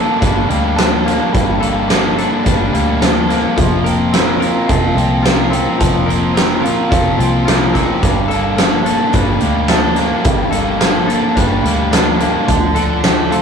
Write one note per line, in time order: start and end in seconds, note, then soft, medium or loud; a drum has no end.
0.00 0.49 G2 medium
0.00 0.48 G3 medium
0.00 0.49 G3 medium
0.00 0.48 A#3 medium
0.00 0.78 A#3 medium
0.00 1.05 A#3 medium
0.00 0.22 D4 medium
0.00 1.33 D4 medium
0.00 0.75 A4 medium
0.00 1.33 A4 medium
0.21 0.45 G1 medium
0.21 1.61 G3 medium
0.21 0.75 D4 medium
0.21 1.05 D4 medium
0.21 kick loud
0.21 closed hi-hat medium
0.49 1.20 D2 medium
0.49 1.31 G3 medium
0.49 1.34 G3 medium
0.49 1.04 A#3 medium
0.49 closed hi-hat medium
0.76 2.19 A#3 medium
0.76 2.17 D4 medium
0.76 1.88 A4 medium
0.76 snare loud
0.76 closed hi-hat medium
1.04 1.60 A#3 medium
1.04 1.88 A#3 medium
1.04 1.89 D4 medium
1.04 snare soft
1.04 closed hi-hat medium
1.32 2.27 G1 loud
1.32 2.72 G2 medium
1.32 2.72 G3 medium
1.32 1.60 G3 medium
1.32 kick medium
1.32 closed hi-hat medium
1.60 2.74 G3 medium
1.60 2.73 A#3 medium
1.60 2.16 A4 medium
1.60 closed hi-hat medium
1.88 3.28 A#3 medium
1.88 2.45 D4 medium
1.88 2.99 A4 medium
1.88 snare loud
1.88 closed hi-hat medium
2.17 3.03 A#3 medium
2.17 3.57 D4 medium
2.17 3.57 A4 medium
2.17 closed hi-hat medium
2.44 2.69 G1 medium
2.44 3.56 G3 medium
2.44 3.00 D4 medium
2.44 3.30 D4 medium
2.44 kick loud
2.44 closed hi-hat medium
2.73 3.43 D2 medium
2.73 3.57 G3 medium
2.73 3.58 G3 medium
2.73 3.28 A#3 medium
2.73 closed hi-hat medium
3.00 3.86 A#3 medium
3.00 3.57 D4 medium
3.00 3.56 A4 medium
3.00 snare loud
3.00 closed hi-hat medium
3.28 3.85 A#3 medium
3.28 4.12 A#3 medium
3.28 3.58 D4 medium
3.28 snare soft
3.28 closed hi-hat medium
3.56 4.50 F1 medium
3.56 4.68 F3 medium
3.56 4.94 F3 medium
3.56 4.97 F3 medium
3.56 kick loud
3.56 closed hi-hat medium
3.84 4.97 A#3 medium
3.84 4.96 C4 medium
3.84 4.39 A#4 medium
3.84 closed hi-hat medium
4.12 5.49 C4 medium
4.12 5.24 A#4 medium
4.12 4.69 A#4 medium
4.12 snare loud
4.12 closed hi-hat medium
4.40 5.80 F4 medium
4.40 5.22 F4 medium
4.40 6.06 A#4 medium
4.40 closed hi-hat medium
4.67 4.92 F1 medium
4.67 5.78 F3 medium
4.67 5.21 F4 medium
4.67 5.50 A#4 medium
4.67 kick loud
4.67 closed hi-hat medium
4.95 5.65 C2 medium
4.95 5.77 F3 medium
4.95 6.08 A#3 medium
4.95 5.51 C4 medium
4.95 closed hi-hat medium
5.23 6.63 F4 medium
5.23 6.35 A#4 medium
5.23 snare loud
5.23 closed hi-hat loud
5.50 6.33 C4 medium
5.50 6.07 C4 medium
5.50 6.37 A#4 medium
5.50 closed hi-hat medium
5.78 6.73 F1 medium
5.78 7.16 F3 medium
5.78 7.19 F3 medium
5.78 6.90 F3 medium
5.78 kick loud
5.78 closed hi-hat medium
6.06 7.19 A#3 medium
6.06 7.18 C4 medium
6.06 6.61 A#4 medium
6.06 closed hi-hat medium
6.34 7.72 C4 medium
6.34 7.46 A#4 medium
6.34 6.91 A#4 medium
6.34 snare loud
6.34 closed hi-hat medium
6.61 8.03 F4 medium
6.61 7.44 F4 medium
6.61 8.28 A#4 medium
6.65 closed hi-hat medium
6.89 7.15 F1 medium
6.89 8.03 F3 medium
6.89 7.44 F4 medium
6.89 7.73 A#4 medium
6.89 kick loud
6.89 closed hi-hat medium
7.18 7.88 C2 medium
7.18 8.01 F3 medium
7.18 8.87 A#3 medium
7.18 7.73 C4 medium
7.18 closed hi-hat medium
7.45 8.02 F4 medium
7.45 8.58 A#4 medium
7.45 snare loud
7.45 closed hi-hat loud
7.73 8.02 C4 medium
7.73 8.03 C4 medium
7.73 11.23 A#4 medium
7.73 kick medium
7.73 snare soft
7.73 closed hi-hat medium
8.02 8.96 G1 loud
8.02 9.42 G2 medium
8.02 9.40 G3 medium
8.02 8.30 G3 medium
8.02 kick loud
8.02 closed hi-hat medium
8.28 9.41 G3 medium
8.28 9.41 A#3 medium
8.28 8.85 A4 medium
8.28 closed hi-hat medium
8.57 9.95 A#3 medium
8.57 9.14 D4 medium
8.57 9.69 A4 medium
8.57 snare loud
8.57 closed hi-hat medium
8.57 tambourine medium
8.85 9.69 A#3 medium
8.85 11.08 D4 medium
8.85 10.26 A4 medium
8.85 closed hi-hat medium
9.13 9.37 G1 medium
9.13 10.54 G3 medium
9.13 9.68 D4 medium
9.13 9.97 D4 medium
9.13 kick loud
9.13 closed hi-hat medium
9.40 10.12 D2 medium
9.40 10.22 G3 medium
9.40 10.25 G3 medium
9.40 9.96 A#3 medium
9.40 closed hi-hat medium
9.68 11.07 A#3 medium
9.68 11.35 D4 medium
9.68 10.80 A4 medium
9.68 snare loud
9.68 closed hi-hat medium
9.68 tambourine medium
9.96 10.78 A#3 medium
9.96 10.51 A#3 medium
9.96 10.80 D4 medium
9.96 snare soft
9.96 closed hi-hat medium
10.23 11.18 G1 medium
10.23 11.65 G2 medium
10.23 11.61 G3 medium
10.23 10.53 G3 medium
10.23 kick loud
10.23 closed hi-hat medium
10.51 11.63 G3 medium
10.51 11.64 A#3 medium
10.51 11.06 A4 medium
10.51 closed hi-hat medium
10.79 12.19 A#3 medium
10.79 11.38 D4 medium
10.79 11.92 A4 medium
10.79 snare loud
10.79 closed hi-hat medium
10.79 tambourine loud
11.07 11.90 A#3 medium
11.07 12.76 D4 medium
11.07 12.74 A4 medium
11.07 closed hi-hat medium
11.36 11.60 G1 medium
11.36 12.47 G3 medium
11.36 11.91 D4 medium
11.36 12.20 D4 medium
11.36 kick loud
11.36 closed hi-hat medium
11.63 12.34 D2 medium
11.63 12.46 G3 medium
11.63 12.49 G3 medium
11.63 12.19 A#3 medium
11.63 closed hi-hat medium
11.91 12.48 A#3 medium
11.91 13.42 D4 medium
11.91 13.04 A4 medium
11.91 snare loud
11.91 closed hi-hat loud
11.91 tambourine medium
12.20 12.49 A#3 medium
12.20 13.03 D4 medium
12.20 closed hi-hat medium
12.47 13.41 D2 loud
12.47 13.42 D3 medium
12.47 13.42 F3 medium
12.47 kick loud
12.47 closed hi-hat medium
12.75 13.42 F3 medium
12.75 13.42 D4 medium
12.75 13.31 A4 medium
12.75 closed hi-hat medium
13.04 13.42 A3 medium
13.04 13.42 D4 medium
13.04 13.42 A4 medium
13.04 snare loud
13.04 closed hi-hat medium
13.04 tambourine loud
13.31 13.42 A3 medium
13.31 13.42 F4 medium
13.31 13.42 A4 medium
13.31 closed hi-hat medium